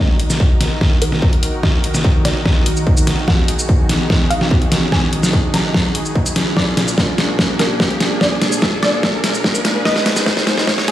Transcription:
0.00 D#3 D#4 F#4 A#4 D#5, riser
0.20 closed hi-hat
0.30 snare, shaker
0.40 kick
0.61 snare, closed hi-hat
0.81 kick, snare
1.02 A#4, closed hi-hat
1.12 snare
1.22 kick
1.33 closed hi-hat
1.43 closed hi-hat
1.63 D#5, kick, snare
1.84 closed hi-hat
1.94 snare, shaker
2.04 kick
2.25 D5, snare, closed hi-hat
2.46 kick, snare
2.66 closed hi-hat
2.77 shaker
2.87 kick
2.97 closed hi-hat, shaker
3.07 snare, closed hi-hat
3.28 G#4 F#5, kick, snare
3.48 closed hi-hat
3.59 shaker
3.69 kick
3.89 snare, closed hi-hat
4.10 kick, snare
4.30 F5, closed hi-hat
4.41 snare
4.51 kick
4.62 closed hi-hat
4.72 snare, closed hi-hat
4.92 G#5, kick, snare
5.13 closed hi-hat
5.23 snare, shaker
5.33 kick
5.54 A#5, snare, closed hi-hat
5.74 kick, snare
5.95 closed hi-hat
6.05 shaker
6.16 kick
6.26 closed hi-hat, shaker
6.36 snare, closed hi-hat
6.57 A#2 A#3 D4 D5, kick, snare
6.77 snare, closed hi-hat
6.88 shaker
6.98 kick, snare
7.18 snare, open hi-hat
7.39 kick, snare
7.59 A#4, snare, closed hi-hat
7.80 kick, snare
7.91 closed hi-hat
8.00 snare, open hi-hat
8.21 D5, kick, snare
8.42 snare, closed hi-hat
8.52 shaker
8.62 kick, snare
8.83 D5, snare, open hi-hat
9.03 kick, snare
9.24 snare, closed hi-hat
9.34 shaker
9.44 kick, snare
9.55 closed hi-hat, shaker
9.65 snare, open hi-hat
9.85 B2 B3 D#4 D#5, kick, snare
9.96 snare
10.06 snare, closed hi-hat
10.16 snare, shaker
10.26 kick, snare
10.37 snare
10.47 snare, open hi-hat
10.58 snare
10.67 kick, snare
10.78 snare
10.88 G#4, snare, closed hi-hat

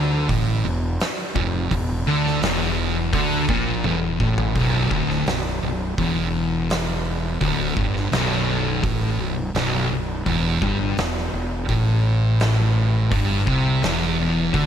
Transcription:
Already playing: D2 D3
0.29 A1 A2, kick, open hi-hat
0.64 E1 E2
1.00 snare, open hi-hat
1.35 F1 F2, kick
1.71 E1 E2, kick, open hi-hat
2.06 D2 D3
2.26 snare
2.42 E1 E2, snare, open hi-hat
3.13 D2 D3, kick, open hi-hat
3.49 A#1 A#2, kick
3.84 E1 E2, high tom
4.20 A1 A2, kick
4.38 floor tom
4.55 B0 B1, kick, open hi-hat
4.91 D1 D2, kick
5.10 snare
5.27 B0 B1, snare, open hi-hat
5.46 snare
5.63 B0 B1
5.98 E1 E2, kick, open hi-hat
6.70 snare, open hi-hat
7.40 D1 D2, kick, open hi-hat
7.77 G1 G2, kick
7.96 snare
8.12 B0 B1, snare, open hi-hat
8.32 snare
8.84 A1 A2, kick, open hi-hat
9.18 B0 B1
9.55 B0 B1, snare, open hi-hat
9.90 B0 B1
10.26 E1 E2, kick, open hi-hat
10.62 G1 G2, kick
10.98 E1 E2, snare, open hi-hat
11.17 snare
11.33 E1 E2
11.69 A1 A2, kick, open hi-hat
12.40 snare, open hi-hat
13.11 G1 G2, kick, open hi-hat
13.47 C2 C3, kick
13.82 E1 E2, snare, open hi-hat
14.02 snare
14.53 D2 D3, kick, open hi-hat

